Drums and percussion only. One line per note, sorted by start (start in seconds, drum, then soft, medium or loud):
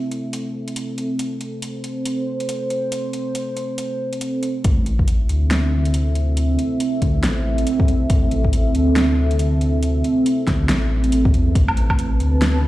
0.12 closed hi-hat soft
0.33 closed hi-hat medium
0.68 closed hi-hat soft
0.76 closed hi-hat medium
0.98 closed hi-hat soft
1.19 closed hi-hat medium
1.41 closed hi-hat soft
1.62 closed hi-hat medium
1.84 closed hi-hat medium
2.06 closed hi-hat medium
2.40 closed hi-hat soft
2.49 closed hi-hat medium
2.70 closed hi-hat soft
2.92 closed hi-hat medium
3.13 closed hi-hat medium
3.35 closed hi-hat medium
3.57 closed hi-hat medium
3.78 closed hi-hat medium
4.13 closed hi-hat soft
4.21 closed hi-hat medium
4.43 closed hi-hat medium
4.64 kick loud
4.64 closed hi-hat medium
4.86 closed hi-hat medium
4.99 kick medium
5.08 closed hi-hat medium
5.29 closed hi-hat medium
5.51 snare loud
5.51 closed hi-hat medium
5.85 closed hi-hat soft
5.94 closed hi-hat medium
6.15 closed hi-hat medium
6.37 closed hi-hat medium
6.59 closed hi-hat medium
6.80 closed hi-hat medium
7.02 kick medium
7.02 closed hi-hat medium
7.24 snare loud
7.24 closed hi-hat medium
7.58 closed hi-hat soft
7.67 closed hi-hat medium
7.80 kick loud
7.88 closed hi-hat medium
8.10 kick loud
8.10 closed hi-hat medium
8.31 closed hi-hat medium
8.44 kick medium
8.53 closed hi-hat medium
8.75 closed hi-hat medium
8.96 snare loud
8.96 closed hi-hat medium
9.31 closed hi-hat medium
9.39 closed hi-hat medium
9.61 closed hi-hat medium
9.83 closed hi-hat medium
10.04 closed hi-hat medium
10.26 closed hi-hat medium
10.47 kick medium
10.47 snare medium
10.47 closed hi-hat medium
10.69 snare loud
10.69 closed hi-hat medium
11.04 closed hi-hat medium
11.12 closed hi-hat medium
11.25 kick loud
11.34 closed hi-hat medium
11.55 kick loud
11.55 closed hi-hat medium
11.68 low woodblock medium
11.77 closed hi-hat medium
11.90 kick medium
11.90 low woodblock medium
11.99 closed hi-hat medium
12.20 closed hi-hat soft
12.42 snare loud
12.42 closed hi-hat medium